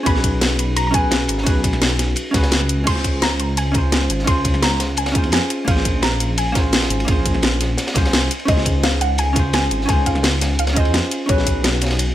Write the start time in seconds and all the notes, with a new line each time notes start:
0.03 B1 C#4 D#4 F#4 B5, kick, closed hi-hat, ride
0.08 G#4 B4
0.15 snare
0.24 kick, closed hi-hat, ride
0.41 snare, closed hi-hat, ride
0.59 closed hi-hat, ride
0.76 A#5, closed hi-hat, ride
0.87 C#4 A#5
0.94 F#4 G#4 B4 G#5, kick, closed hi-hat, ride
1.11 snare, closed hi-hat, ride
1.28 G#1, closed hi-hat, ride
1.38 snare
1.43 B1 C#4 D#4 F#4, kick, closed hi-hat, ride
1.48 G#4 B4
1.64 kick, closed hi-hat, ride
1.73 snare
1.82 snare, closed hi-hat, ride
1.99 snare, closed hi-hat, ride
2.16 closed hi-hat, ride
2.31 C#2 C#4 F#4, kick, snare, closed hi-hat, ride
2.36 G#4 B4
2.43 snare, ride
2.51 snare, closed hi-hat, ride
2.61 snare
2.69 closed hi-hat
2.84 C#2 C#4 F4 C6, kick, closed hi-hat, crash, ride
2.88 G#4 C5
2.96 snare
3.04 kick, closed hi-hat, ride
3.22 A#5, snare, closed hi-hat, ride
3.39 closed hi-hat, ride
3.57 G#5, closed hi-hat, ride
3.72 C#4 F4, kick, closed hi-hat, ride
3.76 G#4 C5
3.92 snare, closed hi-hat, ride
4.10 G#1, closed hi-hat, ride
4.19 snare
4.24 C#2 C#4 F4 C6, kick, closed hi-hat, ride
4.29 G#4 C5
4.45 kick, closed hi-hat, ride
4.54 snare
4.62 A#5, snare, closed hi-hat, ride
4.80 snare, closed hi-hat, ride
4.97 C#2 G#5, closed hi-hat, ride
5.06 snare, ride
5.12 C#4 F4, kick, closed hi-hat
5.17 G#4 C5
5.24 F2, ride
5.32 G#5, snare, closed hi-hat, ride
5.50 closed hi-hat, ride
5.65 A#1 A#3 C#4 F4 F5, kick, closed hi-hat, ride
5.69 G#4 C5
5.77 snare
5.85 kick, closed hi-hat, ride
6.02 A#5, snare, closed hi-hat, ride
6.20 closed hi-hat, ride
6.38 G#5, closed hi-hat, ride
6.52 A#3 C#4 F4, kick, snare, closed hi-hat, ride
6.57 G#4 C5
6.72 snare, closed hi-hat, ride
6.82 snare, ride
6.90 G#1, closed hi-hat
7.00 ride
7.05 A#1 A#3 C#4 F4, kick, closed hi-hat, ride
7.09 G#4 C5
7.25 kick, closed hi-hat, ride
7.34 snare
7.42 snare, closed hi-hat, ride
7.60 snare, closed hi-hat, ride
7.78 snare, closed hi-hat, ride
7.87 snare, ride
7.94 C2 A#3 C#4 F4 G#4 C5, kick, snare, closed hi-hat, ride
8.05 snare, ride
8.13 snare, closed hi-hat, ride
8.31 closed hi-hat, ride
8.39 ride
8.45 C#2 C#4 D#4 F4 D#5, kick, closed hi-hat, ride
8.50 G#4 C5
8.57 snare
8.65 kick, closed hi-hat, ride
8.83 F5, snare, closed hi-hat, ride
9.01 F#5, closed hi-hat, ride
9.18 G#5, closed hi-hat, ride
9.33 C#4 F4, kick, closed hi-hat, ride
9.38 G#4 C5
9.53 G#5, snare, closed hi-hat, ride
9.71 G#1, closed hi-hat, ride
9.81 snare
9.86 C#2 C#4 D#4 F4 G#5, kick, closed hi-hat, ride
9.90 G#4 C5
10.06 F5, kick, closed hi-hat, ride
10.15 snare
10.23 snare, closed hi-hat, ride
10.41 snare, closed hi-hat, ride
10.59 C#2 F5, closed hi-hat, ride
10.67 snare, ride
10.73 C#4 F4 D#5, kick, closed hi-hat
10.78 G#4 C5
10.85 F2, ride
10.94 snare, closed hi-hat, ride
11.11 closed hi-hat, ride
11.26 B1 C#4 D#4 F#4 C#5, kick, closed hi-hat, ride
11.31 G#4 B4
11.38 snare
11.47 kick, closed hi-hat, ride
11.64 snare, closed hi-hat, ride
11.81 snare, closed hi-hat, ride
11.86 snare, ride
11.91 snare, ride
11.99 closed hi-hat, ride